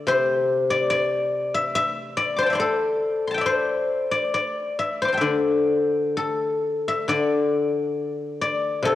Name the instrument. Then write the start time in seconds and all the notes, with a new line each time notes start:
guzheng
Already playing: D3 D5 E5
0.07 C3 C5
0.70 D5
0.90 D5
1.54 E5
1.75 E5
2.17 D5
2.36 C5 C6 D6
2.43 G5 A5
2.50 D5 E5
2.55 C5
2.60 A4
3.27 A5 C6
3.34 E5 G5
3.41 D5
3.46 C5
4.11 D5
4.34 D5
4.79 E5
5.02 C5 D6
5.08 C6
5.12 G5 A5
5.17 D3 D5 E5
6.17 A4
6.88 E5
7.08 D3 D5
8.41 D5
8.83 C3 C5